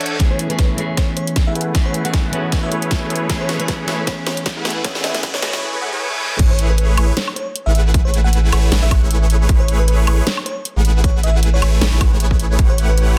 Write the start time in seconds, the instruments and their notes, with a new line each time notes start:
Already playing: clean electric guitar E3 A3 D4 F#4, supersaw synth D4 A4 C#5 E5 F#5, reverse cymbal
0.01 closed hi-hat
0.06 closed hi-hat
0.19 clean electric guitar E3 A3 B3 C#4 G#4, supersaw synth A3 E4 G#4 B4 C#5, kick, snare, closed hi-hat, riser
0.31 fm electric piano C#5
0.39 closed hi-hat
0.49 clean electric guitar E3 A3 B3 C#4 G#4, fm electric piano B4, closed hi-hat
0.59 fm electric piano B4, kick, snare, closed hi-hat
0.76 clean electric guitar E3 A3 B3 C#4 G#4, supersaw synth A3 E4 G#4 B4 C#5, closed hi-hat
0.97 fm electric piano C#5, kick, snare, closed hi-hat
1.17 fm electric piano C#5, closed hi-hat
1.27 closed hi-hat
1.36 kick, snare, closed hi-hat
1.47 supersaw synth A3 E4 G#4 B4 F#5, fm electric piano E5
1.55 closed hi-hat
1.61 closed hi-hat
1.74 clean electric guitar E3 A3 B3 C#4 G#4, kick, snare, closed hi-hat
1.86 fm electric piano C#5
1.94 closed hi-hat
2.04 clean electric guitar E3 A3 B3 C#4 G#4, fm electric piano F#5, closed hi-hat
2.14 kick, snare, closed hi-hat
2.31 clean electric guitar E3 A3 B3 C#4 F#4, supersaw synth A3 E4 G#4 B4 C#5, closed hi-hat
2.52 supersaw synth A3 E4 G#4 B4 C#5, kick, snare, closed hi-hat
2.63 supersaw synth A3 E4 G#4 B4 C#5, fm electric piano E5
2.72 supersaw synth A3 E4 G#4 B4 C#5, closed hi-hat
2.82 closed hi-hat
2.91 kick, snare, closed hi-hat
3.10 closed hi-hat
3.16 closed hi-hat
3.29 clean electric guitar E3 A3 B3 C#4 G#4, supersaw synth A3 E4 G#4 B4 C#5, kick, snare, closed hi-hat
3.41 fm electric piano C#5
3.49 snare, closed hi-hat
3.59 clean electric guitar E3 A3 B3 C#4 G#4, fm electric piano B4, closed hi-hat
3.68 fm electric piano B4, kick, snare, closed hi-hat
3.86 clean electric guitar E3 A3 B3 C#4 G#4, supersaw synth A3 E4 G#4 B4 C#5, snare, closed hi-hat
4.07 fm electric piano C#5, kick, snare, closed hi-hat
4.27 fm electric piano C#5, snare, closed hi-hat
4.37 closed hi-hat
4.46 kick, snare, closed hi-hat
4.57 supersaw synth A3 E4 G#4 B4 F#5
4.65 snare, closed hi-hat
4.70 closed hi-hat
4.84 clean electric guitar E3 A3 B3 C#4 G#4, fm electric piano C#5, kick, snare, closed hi-hat
4.95 snare
5.04 fm electric piano E5, snare, closed hi-hat
5.14 clean electric guitar E3 A3 B3 C#4 G#4, snare, closed hi-hat
5.23 kick, snare, closed hi-hat
5.34 fm electric piano C#5, snare
5.42 clean electric guitar E3 A3 B3 C#4 F#4, supersaw synth A3 E4 G#4 B4 C#5, snare, closed hi-hat
5.53 snare
5.62 supersaw synth A3 E4 G#4 B4 C#5, reverse cymbal
5.73 supersaw synth A3 E4 G#4 B4 C#5
5.81 supersaw synth A3 E4 G#4 B4 F#5
5.92 supersaw synth A3 E4 G#4 B4 C#5
6.11 high tom
6.20 mid tom
6.31 mid tom
6.39 sub bass A1, supersaw synth A3 E4 G#4 B4 C#5, kick, closed hi-hat, crash
6.50 fm electric piano C#5
6.59 closed hi-hat
6.70 fm electric piano B4
6.78 fm electric piano B4, closed hi-hat
6.97 sub bass A1, supersaw synth A3 E4 G#4 B4 C#5, closed hi-hat, high woodblock
7.17 fm electric piano C#5, snare, closed hi-hat
7.28 high woodblock
7.36 fm electric piano C#5, closed hi-hat
7.56 closed hi-hat
7.66 sub bass A1, supersaw synth A3 E4 G#4 B4 F#5, fm electric piano E5
7.75 closed hi-hat
7.94 kick, closed hi-hat
8.05 fm electric piano C#5
8.14 closed hi-hat
8.24 fm electric piano F#5
8.33 closed hi-hat
8.52 sub bass A1, supersaw synth A3 E4 G#4 B4 C#5, closed hi-hat, high woodblock
8.72 sub bass A1, supersaw synth A3 E4 G#4 B4 C#5, snare, closed hi-hat
8.82 sub bass A1, supersaw synth A3 E4 G#4 B4 C#5, fm electric piano E5
8.91 sub bass A1, supersaw synth A3 E4 G#4 B4 F#5, kick, closed hi-hat, high woodblock
9.02 sub bass A1, supersaw synth A3 E4 G#4 B4 C#5
9.11 closed hi-hat
9.30 closed hi-hat
9.49 sub bass A1, supersaw synth A3 E4 G#4 B4 C#5, kick, closed hi-hat
9.60 fm electric piano C#5
9.68 closed hi-hat
9.79 fm electric piano B4
9.88 fm electric piano B4, closed hi-hat
10.07 sub bass A1, supersaw synth A3 E4 G#4 B4 C#5, closed hi-hat, high woodblock
10.26 fm electric piano C#5, snare, closed hi-hat
10.37 high woodblock
10.46 fm electric piano C#5, closed hi-hat
10.65 closed hi-hat
10.76 sub bass A1, supersaw synth A3 E4 G#4 B4 F#5
10.85 closed hi-hat
11.04 fm electric piano C#5, kick, closed hi-hat
11.23 fm electric piano E5, closed hi-hat
11.43 closed hi-hat
11.54 fm electric piano C#5
11.62 sub bass A1, supersaw synth A3 E4 G#4 B4 C#5, closed hi-hat, high woodblock
11.81 sub bass A1, supersaw synth A3 E4 G#4 B4 C#5, snare, closed hi-hat
11.92 sub bass A1, supersaw synth A3 E4 G#4 B4 C#5
12.01 sub bass A1, supersaw synth A3 E4 G#4 B4 F#5, kick, closed hi-hat, high woodblock
12.12 sub bass A1, supersaw synth A3 E4 G#4 B4 C#5
12.20 closed hi-hat
12.31 kick
12.39 closed hi-hat
12.59 sub bass A1, supersaw synth A3 E4 G4 B4 C#5 F#5, kick, closed hi-hat
12.70 fm electric piano C#5
12.78 closed hi-hat
12.89 fm electric piano B4
12.98 closed hi-hat